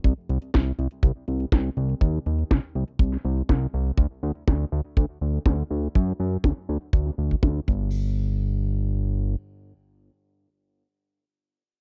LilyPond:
<<
  \new Staff \with { instrumentName = "Analog synth bass" } { \clef bass \time 4/4 \key d \phrygian \tempo 4 = 122 c,8 c,8 c,8 c,8 c,8 c,8 c,8 c,8 | ees,8 ees,8 c,8 c,8 c,8 c,8 c,8 c,8 | d,8 d,8 d,8 d,8 d,8 d,8 d,8 d,8 | fis,8 fis,8 d,8 d,8 d,8 d,8 d,8 g,,8~ |
g,,2. r4 | r1 | }
  \new DrumStaff \with { instrumentName = "Drums" } \drummode { \time 4/4 <hh bd>8 hh16 hh16 <hh bd sn>8 hh16 hh16 <hh bd>8 hh16 hh16 <bd sn>16 hh16 hh16 hh16 | <hh bd>8 hh16 hh16 <bd sn>8 hh16 hh16 <hh bd>16 sn16 hh16 hh16 <bd sn>8 hh16 hh16 | bd8 hh16 hh16 <bd sn>8 hh16 hh16 bd8 hh16 hh16 <bd sn>8 hh16 hh16 | bd8. hh16 <bd sn>8 hh16 hh16 bd16 sn16 hh16 bd16 <bd sn>8 bd8 |
r4 r4 r4 r4 | r4 r4 r4 r4 | }
>>